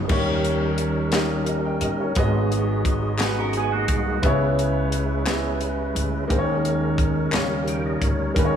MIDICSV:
0, 0, Header, 1, 6, 480
1, 0, Start_track
1, 0, Tempo, 687285
1, 74, Time_signature, 6, 3, 24, 8
1, 5980, End_track
2, 0, Start_track
2, 0, Title_t, "Upright piano"
2, 0, Program_c, 0, 0
2, 0, Control_c, 0, 64, 127
2, 0, Note_on_c, 0, 44, 55
2, 0, Note_on_c, 0, 56, 67
2, 0, Note_on_c, 0, 63, 59
2, 0, Note_on_c, 0, 66, 60
2, 0, Note_on_c, 0, 68, 77
2, 0, Note_on_c, 0, 71, 76
2, 55, Note_on_c, 0, 58, 81
2, 65, Note_off_c, 0, 63, 0
2, 65, Note_on_c, 0, 63, 72
2, 67, Note_on_c, 0, 51, 65
2, 73, Note_on_c, 0, 67, 76
2, 80, Note_on_c, 0, 73, 86
2, 82, Control_c, 0, 64, 0
2, 83, Note_off_c, 0, 44, 0
2, 83, Note_off_c, 0, 56, 0
2, 83, Note_off_c, 0, 66, 0
2, 86, Note_off_c, 0, 71, 0
2, 89, Note_off_c, 0, 68, 0
2, 196, Control_c, 0, 64, 127
2, 710, Note_off_c, 0, 58, 0
2, 714, Note_off_c, 0, 63, 0
2, 719, Note_off_c, 0, 67, 0
2, 722, Note_off_c, 0, 73, 0
2, 763, Note_off_c, 0, 51, 0
2, 781, Note_on_c, 0, 58, 68
2, 790, Note_on_c, 0, 63, 66
2, 799, Note_on_c, 0, 67, 62
2, 807, Note_on_c, 0, 75, 74
2, 1025, Note_off_c, 0, 75, 0
2, 1035, Note_on_c, 0, 75, 55
2, 1149, Note_off_c, 0, 75, 0
2, 1156, Note_on_c, 0, 79, 60
2, 1161, Note_on_c, 0, 75, 52
2, 1269, Note_off_c, 0, 79, 0
2, 1272, Note_off_c, 0, 75, 0
2, 1284, Note_on_c, 0, 75, 63
2, 1394, Note_off_c, 0, 75, 0
2, 1401, Note_on_c, 0, 73, 55
2, 1404, Note_on_c, 0, 70, 44
2, 1433, Note_off_c, 0, 58, 0
2, 1437, Note_off_c, 0, 63, 0
2, 1442, Note_off_c, 0, 67, 0
2, 1511, Note_on_c, 0, 59, 85
2, 1518, Note_on_c, 0, 66, 71
2, 1522, Note_on_c, 0, 44, 67
2, 1523, Control_c, 0, 64, 0
2, 1525, Note_on_c, 0, 68, 74
2, 1534, Note_on_c, 0, 75, 95
2, 1626, Note_off_c, 0, 73, 0
2, 1627, Note_off_c, 0, 70, 0
2, 1631, Control_c, 0, 64, 127
2, 2157, Note_off_c, 0, 59, 0
2, 2161, Note_off_c, 0, 66, 0
2, 2165, Note_off_c, 0, 68, 0
2, 2169, Note_off_c, 0, 75, 0
2, 2211, Note_off_c, 0, 44, 0
2, 2226, Note_on_c, 0, 47, 70
2, 2234, Note_on_c, 0, 66, 67
2, 2246, Note_on_c, 0, 68, 67
2, 2255, Note_on_c, 0, 78, 80
2, 2875, Note_off_c, 0, 47, 0
2, 2879, Note_off_c, 0, 66, 0
2, 2885, Note_off_c, 0, 68, 0
2, 2890, Note_off_c, 0, 78, 0
2, 2950, Note_on_c, 0, 59, 86
2, 2959, Note_on_c, 0, 64, 78
2, 2964, Note_on_c, 0, 49, 69
2, 2965, Control_c, 0, 64, 0
2, 2968, Note_on_c, 0, 68, 79
2, 2977, Note_on_c, 0, 73, 93
2, 3069, Control_c, 0, 64, 127
2, 3597, Note_off_c, 0, 59, 0
2, 3601, Note_off_c, 0, 64, 0
2, 3605, Note_off_c, 0, 68, 0
2, 3610, Note_off_c, 0, 73, 0
2, 3651, Note_off_c, 0, 49, 0
2, 3670, Note_on_c, 0, 59, 71
2, 3677, Note_on_c, 0, 64, 68
2, 3688, Note_on_c, 0, 68, 64
2, 3699, Note_on_c, 0, 75, 76
2, 4316, Note_off_c, 0, 59, 0
2, 4320, Note_off_c, 0, 64, 0
2, 4325, Note_off_c, 0, 68, 0
2, 4330, Note_off_c, 0, 75, 0
2, 4384, Note_on_c, 0, 58, 82
2, 4393, Note_on_c, 0, 63, 74
2, 4401, Note_on_c, 0, 51, 68
2, 4403, Note_on_c, 0, 68, 71
2, 4404, Control_c, 0, 64, 0
2, 4411, Note_on_c, 0, 72, 69
2, 4447, Note_off_c, 0, 72, 0
2, 4459, Note_on_c, 0, 73, 90
2, 4544, Control_c, 0, 64, 127
2, 5033, Note_off_c, 0, 58, 0
2, 5037, Note_off_c, 0, 63, 0
2, 5042, Note_off_c, 0, 68, 0
2, 5070, Note_off_c, 0, 73, 0
2, 5088, Note_off_c, 0, 51, 0
2, 5112, Note_on_c, 0, 58, 69
2, 5120, Note_on_c, 0, 63, 64
2, 5122, Control_c, 0, 64, 0
2, 5127, Note_on_c, 0, 49, 66
2, 5132, Note_on_c, 0, 67, 60
2, 5137, Note_on_c, 0, 73, 76
2, 5231, Control_c, 0, 64, 127
2, 5756, Note_off_c, 0, 58, 0
2, 5759, Note_off_c, 0, 63, 0
2, 5765, Note_off_c, 0, 67, 0
2, 5768, Note_off_c, 0, 73, 0
2, 5810, Note_off_c, 0, 49, 0
2, 5827, Note_on_c, 0, 58, 82
2, 5839, Note_on_c, 0, 63, 74
2, 5840, Control_c, 0, 64, 0
2, 5841, Note_on_c, 0, 51, 69
2, 5846, Note_on_c, 0, 68, 75
2, 5857, Note_on_c, 0, 71, 71
2, 5889, Note_off_c, 0, 71, 0
2, 5903, Note_on_c, 0, 73, 87
2, 5964, Control_c, 0, 64, 127
2, 5980, Note_off_c, 0, 51, 0
2, 5980, Note_off_c, 0, 58, 0
2, 5980, Note_off_c, 0, 63, 0
2, 5980, Note_off_c, 0, 68, 0
2, 5980, Note_off_c, 0, 73, 0
2, 5980, End_track
3, 0, Start_track
3, 0, Title_t, "Clean electric guitar"
3, 0, Program_c, 1, 27
3, 2251, Note_on_c, 1, 71, 69
3, 2259, Note_on_c, 1, 63, 57
3, 2357, Note_off_c, 1, 71, 0
3, 2362, Note_off_c, 1, 63, 0
3, 2367, Note_on_c, 1, 61, 60
3, 2373, Note_on_c, 1, 70, 59
3, 2476, Note_off_c, 1, 61, 0
3, 2477, Note_off_c, 1, 70, 0
3, 2492, Note_on_c, 1, 59, 60
3, 2496, Note_on_c, 1, 68, 70
3, 2597, Note_off_c, 1, 59, 0
3, 2599, Note_off_c, 1, 68, 0
3, 2600, Note_on_c, 1, 66, 68
3, 2606, Note_on_c, 1, 58, 55
3, 2939, Note_off_c, 1, 66, 0
3, 2943, Note_off_c, 1, 58, 0
3, 5980, End_track
4, 0, Start_track
4, 0, Title_t, "Tonewheel organ"
4, 0, Program_c, 2, 16
4, 76, Note_on_c, 2, 55, 68
4, 77, Note_on_c, 2, 61, 64
4, 82, Note_on_c, 2, 70, 74
4, 84, Note_on_c, 2, 63, 59
4, 1488, Note_off_c, 2, 55, 0
4, 1489, Note_off_c, 2, 61, 0
4, 1491, Note_off_c, 2, 70, 0
4, 1492, Note_off_c, 2, 63, 0
4, 1511, Note_on_c, 2, 63, 60
4, 1511, Note_on_c, 2, 66, 67
4, 1513, Note_on_c, 2, 68, 73
4, 1516, Note_on_c, 2, 56, 69
4, 2925, Note_off_c, 2, 63, 0
4, 2925, Note_off_c, 2, 66, 0
4, 2926, Note_off_c, 2, 68, 0
4, 2927, Note_off_c, 2, 56, 0
4, 2950, Note_on_c, 2, 56, 72
4, 2951, Note_on_c, 2, 64, 62
4, 2952, Note_on_c, 2, 71, 77
4, 2956, Note_on_c, 2, 61, 67
4, 4363, Note_off_c, 2, 56, 0
4, 4364, Note_off_c, 2, 64, 0
4, 4364, Note_off_c, 2, 71, 0
4, 4366, Note_off_c, 2, 61, 0
4, 4403, Note_on_c, 2, 63, 62
4, 4406, Note_on_c, 2, 61, 65
4, 4410, Note_on_c, 2, 70, 80
4, 4411, Note_on_c, 2, 56, 67
4, 5105, Note_off_c, 2, 70, 0
4, 5106, Note_off_c, 2, 63, 0
4, 5110, Note_off_c, 2, 61, 0
4, 5114, Note_on_c, 2, 63, 57
4, 5114, Note_on_c, 2, 70, 71
4, 5118, Note_on_c, 2, 61, 62
4, 5120, Note_on_c, 2, 54, 52
4, 5121, Note_off_c, 2, 56, 0
4, 5159, Note_on_c, 2, 55, 65
4, 5161, Note_off_c, 2, 54, 0
4, 5366, Note_on_c, 2, 79, 63
4, 5471, Note_off_c, 2, 79, 0
4, 5486, Note_on_c, 2, 75, 54
4, 5581, Note_on_c, 2, 73, 60
4, 5591, Note_off_c, 2, 75, 0
4, 5809, Note_off_c, 2, 73, 0
4, 5824, Note_off_c, 2, 70, 0
4, 5825, Note_off_c, 2, 63, 0
4, 5831, Note_off_c, 2, 61, 0
4, 5832, Note_on_c, 2, 54, 55
4, 5832, Note_on_c, 2, 70, 76
4, 5833, Note_on_c, 2, 63, 63
4, 5839, Note_on_c, 2, 61, 60
4, 5854, Note_off_c, 2, 55, 0
4, 5876, Note_off_c, 2, 54, 0
4, 5881, Note_on_c, 2, 56, 70
4, 5980, Note_off_c, 2, 56, 0
4, 5980, Note_off_c, 2, 61, 0
4, 5980, Note_off_c, 2, 63, 0
4, 5980, Note_off_c, 2, 70, 0
4, 5980, End_track
5, 0, Start_track
5, 0, Title_t, "Upright bass"
5, 0, Program_c, 3, 32
5, 68, Note_on_c, 3, 39, 88
5, 1244, Note_off_c, 3, 39, 0
5, 1264, Note_on_c, 3, 31, 74
5, 1490, Note_off_c, 3, 31, 0
5, 1516, Note_on_c, 3, 32, 90
5, 2687, Note_off_c, 3, 32, 0
5, 2713, Note_on_c, 3, 36, 87
5, 2935, Note_off_c, 3, 36, 0
5, 2959, Note_on_c, 3, 37, 86
5, 4128, Note_off_c, 3, 37, 0
5, 4158, Note_on_c, 3, 38, 79
5, 4376, Note_off_c, 3, 38, 0
5, 4403, Note_on_c, 3, 39, 90
5, 5089, Note_off_c, 3, 39, 0
5, 5119, Note_on_c, 3, 39, 88
5, 5567, Note_off_c, 3, 39, 0
5, 5599, Note_on_c, 3, 38, 77
5, 5816, Note_off_c, 3, 38, 0
5, 5841, Note_on_c, 3, 39, 90
5, 5980, Note_off_c, 3, 39, 0
5, 5980, End_track
6, 0, Start_track
6, 0, Title_t, "Drums"
6, 64, Note_on_c, 9, 49, 83
6, 68, Note_on_c, 9, 36, 103
6, 133, Note_off_c, 9, 49, 0
6, 138, Note_off_c, 9, 36, 0
6, 311, Note_on_c, 9, 42, 48
6, 381, Note_off_c, 9, 42, 0
6, 544, Note_on_c, 9, 42, 64
6, 614, Note_off_c, 9, 42, 0
6, 780, Note_on_c, 9, 42, 78
6, 787, Note_on_c, 9, 38, 99
6, 793, Note_on_c, 9, 39, 79
6, 850, Note_off_c, 9, 42, 0
6, 857, Note_off_c, 9, 38, 0
6, 862, Note_off_c, 9, 39, 0
6, 1023, Note_on_c, 9, 42, 48
6, 1093, Note_off_c, 9, 42, 0
6, 1264, Note_on_c, 9, 42, 73
6, 1333, Note_off_c, 9, 42, 0
6, 1504, Note_on_c, 9, 42, 75
6, 1511, Note_on_c, 9, 36, 107
6, 1574, Note_off_c, 9, 42, 0
6, 1581, Note_off_c, 9, 36, 0
6, 1758, Note_on_c, 9, 42, 47
6, 1827, Note_off_c, 9, 42, 0
6, 1990, Note_on_c, 9, 36, 78
6, 1992, Note_on_c, 9, 42, 66
6, 2060, Note_off_c, 9, 36, 0
6, 2062, Note_off_c, 9, 42, 0
6, 2225, Note_on_c, 9, 39, 87
6, 2232, Note_on_c, 9, 42, 81
6, 2239, Note_on_c, 9, 38, 102
6, 2294, Note_off_c, 9, 39, 0
6, 2302, Note_off_c, 9, 42, 0
6, 2309, Note_off_c, 9, 38, 0
6, 2467, Note_on_c, 9, 42, 47
6, 2536, Note_off_c, 9, 42, 0
6, 2711, Note_on_c, 9, 42, 70
6, 2714, Note_on_c, 9, 36, 74
6, 2781, Note_off_c, 9, 42, 0
6, 2784, Note_off_c, 9, 36, 0
6, 2954, Note_on_c, 9, 42, 80
6, 2956, Note_on_c, 9, 36, 114
6, 3024, Note_off_c, 9, 42, 0
6, 3026, Note_off_c, 9, 36, 0
6, 3204, Note_on_c, 9, 42, 46
6, 3274, Note_off_c, 9, 42, 0
6, 3437, Note_on_c, 9, 42, 65
6, 3507, Note_off_c, 9, 42, 0
6, 3674, Note_on_c, 9, 42, 83
6, 3678, Note_on_c, 9, 39, 86
6, 3681, Note_on_c, 9, 38, 99
6, 3744, Note_off_c, 9, 42, 0
6, 3747, Note_off_c, 9, 39, 0
6, 3750, Note_off_c, 9, 38, 0
6, 3915, Note_on_c, 9, 42, 48
6, 3985, Note_off_c, 9, 42, 0
6, 4164, Note_on_c, 9, 42, 66
6, 4233, Note_off_c, 9, 42, 0
6, 4402, Note_on_c, 9, 36, 102
6, 4403, Note_on_c, 9, 42, 82
6, 4472, Note_off_c, 9, 36, 0
6, 4473, Note_off_c, 9, 42, 0
6, 4645, Note_on_c, 9, 42, 51
6, 4714, Note_off_c, 9, 42, 0
6, 4876, Note_on_c, 9, 36, 80
6, 4882, Note_on_c, 9, 42, 60
6, 4946, Note_off_c, 9, 36, 0
6, 4952, Note_off_c, 9, 42, 0
6, 5114, Note_on_c, 9, 39, 83
6, 5121, Note_on_c, 9, 42, 83
6, 5127, Note_on_c, 9, 38, 101
6, 5184, Note_off_c, 9, 39, 0
6, 5191, Note_off_c, 9, 42, 0
6, 5197, Note_off_c, 9, 38, 0
6, 5361, Note_on_c, 9, 42, 50
6, 5430, Note_off_c, 9, 42, 0
6, 5598, Note_on_c, 9, 36, 72
6, 5598, Note_on_c, 9, 42, 74
6, 5668, Note_off_c, 9, 36, 0
6, 5668, Note_off_c, 9, 42, 0
6, 5839, Note_on_c, 9, 36, 105
6, 5842, Note_on_c, 9, 42, 84
6, 5909, Note_off_c, 9, 36, 0
6, 5912, Note_off_c, 9, 42, 0
6, 5980, End_track
0, 0, End_of_file